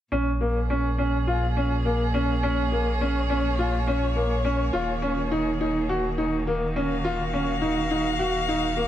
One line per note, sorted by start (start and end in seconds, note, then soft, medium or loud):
0.12 4.71 A#1 medium
0.12 4.74 A#2 medium
0.12 0.29 C#4 medium
0.41 0.58 A#3 medium
0.55 6.33 G#4 medium
0.70 0.87 C#4 medium
0.95 8.88 A#3 medium
0.95 1.15 C#4 medium
1.27 1.44 F4 medium
1.57 1.74 C#4 medium
1.85 2.02 A#3 medium
2.14 2.31 C#4 medium
2.21 6.41 C#5 medium
2.43 2.60 C#4 medium
2.72 2.89 A#3 medium
3.01 3.18 C#4 medium
3.30 3.47 C#4 medium
3.59 3.75 F4 medium
3.87 4.04 C#4 medium
4.16 4.33 A#3 medium
4.45 4.61 C#4 medium
4.73 8.88 D#1 medium
4.73 8.88 D#3 medium
4.73 4.90 F4 medium
5.02 5.19 C#4 medium
5.32 5.48 D#4 medium
5.61 5.77 D#4 medium
5.89 6.06 F#4 medium
6.18 6.35 D#4 medium
6.26 8.88 F#4 medium
6.47 6.64 A#3 medium
6.76 6.93 C#4 medium
6.81 8.88 F5 medium
7.04 7.21 F4 medium
7.33 7.50 C#4 medium
7.62 7.79 D#4 medium
7.91 8.08 D#4 medium
8.19 8.36 F#4 medium
8.48 8.65 D#4 medium
8.77 8.88 A#3 medium